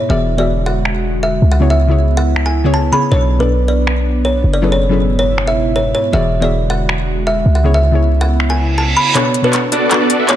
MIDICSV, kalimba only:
0, 0, Header, 1, 2, 480
1, 0, Start_track
1, 0, Tempo, 377358
1, 125, Time_signature, 4, 2, 24, 8
1, 13182, End_track
2, 0, Start_track
2, 0, Title_t, "Kalimba"
2, 0, Program_c, 0, 108
2, 126, Note_on_c, 0, 76, 88
2, 350, Note_off_c, 0, 76, 0
2, 488, Note_on_c, 0, 74, 84
2, 712, Note_off_c, 0, 74, 0
2, 843, Note_on_c, 0, 78, 83
2, 1068, Note_off_c, 0, 78, 0
2, 1564, Note_on_c, 0, 76, 80
2, 1789, Note_off_c, 0, 76, 0
2, 1928, Note_on_c, 0, 78, 79
2, 2074, Note_off_c, 0, 78, 0
2, 2166, Note_on_c, 0, 76, 77
2, 2313, Note_off_c, 0, 76, 0
2, 2763, Note_on_c, 0, 78, 88
2, 2988, Note_off_c, 0, 78, 0
2, 3127, Note_on_c, 0, 80, 80
2, 3351, Note_off_c, 0, 80, 0
2, 3481, Note_on_c, 0, 81, 75
2, 3636, Note_off_c, 0, 81, 0
2, 3721, Note_on_c, 0, 83, 77
2, 3876, Note_off_c, 0, 83, 0
2, 3964, Note_on_c, 0, 73, 90
2, 4189, Note_off_c, 0, 73, 0
2, 4327, Note_on_c, 0, 71, 82
2, 4551, Note_off_c, 0, 71, 0
2, 4684, Note_on_c, 0, 74, 86
2, 4909, Note_off_c, 0, 74, 0
2, 5404, Note_on_c, 0, 73, 83
2, 5629, Note_off_c, 0, 73, 0
2, 5768, Note_on_c, 0, 74, 79
2, 5914, Note_off_c, 0, 74, 0
2, 6005, Note_on_c, 0, 73, 77
2, 6153, Note_off_c, 0, 73, 0
2, 6601, Note_on_c, 0, 73, 84
2, 6827, Note_off_c, 0, 73, 0
2, 6964, Note_on_c, 0, 76, 85
2, 7190, Note_off_c, 0, 76, 0
2, 7323, Note_on_c, 0, 73, 78
2, 7476, Note_off_c, 0, 73, 0
2, 7564, Note_on_c, 0, 73, 84
2, 7717, Note_off_c, 0, 73, 0
2, 7802, Note_on_c, 0, 76, 92
2, 8028, Note_off_c, 0, 76, 0
2, 8169, Note_on_c, 0, 74, 85
2, 8392, Note_off_c, 0, 74, 0
2, 8522, Note_on_c, 0, 78, 88
2, 8748, Note_off_c, 0, 78, 0
2, 9246, Note_on_c, 0, 76, 85
2, 9470, Note_off_c, 0, 76, 0
2, 9606, Note_on_c, 0, 78, 83
2, 9754, Note_off_c, 0, 78, 0
2, 9850, Note_on_c, 0, 76, 75
2, 9995, Note_off_c, 0, 76, 0
2, 10444, Note_on_c, 0, 78, 90
2, 10669, Note_off_c, 0, 78, 0
2, 10811, Note_on_c, 0, 80, 88
2, 11033, Note_off_c, 0, 80, 0
2, 11167, Note_on_c, 0, 81, 78
2, 11319, Note_off_c, 0, 81, 0
2, 11405, Note_on_c, 0, 83, 81
2, 11557, Note_off_c, 0, 83, 0
2, 11644, Note_on_c, 0, 73, 92
2, 11869, Note_off_c, 0, 73, 0
2, 12011, Note_on_c, 0, 71, 85
2, 12233, Note_off_c, 0, 71, 0
2, 12368, Note_on_c, 0, 74, 85
2, 12591, Note_off_c, 0, 74, 0
2, 13087, Note_on_c, 0, 73, 85
2, 13182, Note_off_c, 0, 73, 0
2, 13182, End_track
0, 0, End_of_file